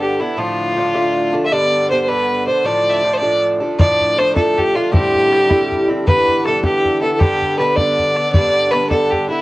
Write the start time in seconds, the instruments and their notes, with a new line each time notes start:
Already playing: bouzouki G2 D3 B3 D4, accordion D3 D4
0.02 fiddle G4
0.20 bouzouki D3 B3 D4, fiddle E4
0.37 bouzouki A2 F3 A3 D4, fiddle F4
0.76 bouzouki A2 F3 A3 D4
0.94 bouzouki A2 F3 A3 D4
1.33 bouzouki F3 A3 D4
1.46 fiddle E5
1.51 bouzouki G2 D3 B3 D4, fiddle D5
1.90 bouzouki G2 D3 B3 D4, fiddle C5
2.02 fiddle C5
2.08 bouzouki G2 D3 B3 D4, fiddle B4
2.47 bouzouki D3 B3 D4, fiddle C5
2.64 bouzouki A2 F3 A3 D4, fiddle D5
2.89 fiddle D5 E5
3.03 bouzouki A2 F3 A3 D4
3.14 fiddle C5 D5
3.22 bouzouki A2 F3 A3 D4
3.60 bouzouki F3 A3 D4
3.78 bouzouki A2 F3 A3 D4, accordion D3 D4, fiddle D5, bodhran
4.00 bodhran
4.17 bouzouki A2 F3 A3 D4, fiddle C5, bodhran
4.35 bouzouki A2 F3 A3 D4, fiddle A4, bodhran
4.58 fiddle G4, bodhran
4.74 bouzouki F3 A3 D4, fiddle F4
4.92 bouzouki A2 G3 C4 E4, fiddle G4, bodhran
5.14 bodhran
5.31 bouzouki A2 G3 C4 E4, bodhran
5.50 bouzouki A2 G3 C4 E4, bodhran
5.72 bodhran
5.88 bouzouki G3 C4 E4
6.06 bouzouki G2 E3 B3 E4, fiddle B4, bodhran
6.28 bodhran
6.45 bouzouki G2 E3 B3 E4, fiddle A4, bodhran
6.63 bouzouki G2 E3 B3 E4, fiddle G4, bodhran
6.85 bodhran
7.02 bouzouki E3 B3 E4, fiddle A4
7.14 fiddle A4
7.19 bouzouki G2 D3 B3 D4, fiddle G4, bodhran
7.42 bodhran
7.58 bouzouki G2 D3 B3 D4, fiddle B4, bodhran
7.76 bouzouki G2 D3 B3 D4, fiddle D5, bodhran
7.99 bodhran
8.15 bouzouki D3 B3 D4, bodhran
8.32 bouzouki G2 D3 B3 D4, accordion D3 D4, fiddle D5, bodhran
8.71 bouzouki G2 D3 B3 D4, fiddle B4, bodhran
8.90 bouzouki G2 D3 B3 D4, fiddle A4, bodhran
9.11 fiddle G4, bodhran
9.28 bouzouki D3 B3 D4, fiddle E4